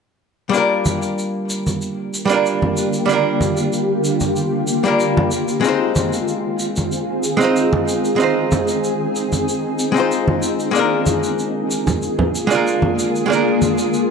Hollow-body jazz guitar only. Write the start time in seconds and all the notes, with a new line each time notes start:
0.49 G3 A#3 D4
0.55 F4 A#4
2.25 G3 A#3
2.29 D4 F4 A#4
3.06 G3 A#3 D4
3.11 F4 A#4
4.84 G3 A#3 D4 F4
4.88 A#4
5.61 G#3 C4 D#4
5.66 F4 C5
7.37 G#3 C4 D#4
7.42 F4 C5
8.16 G#3 C4 D#4
8.22 F4 C5
9.92 G#3 C4 D#4
9.98 F4 C5
10.71 G#3 A#3 D4
10.77 F4 A#4
12.47 G#3 A#3 D4
12.52 F4 A#4
13.26 G#3 A#3
13.30 D4 F4 A#4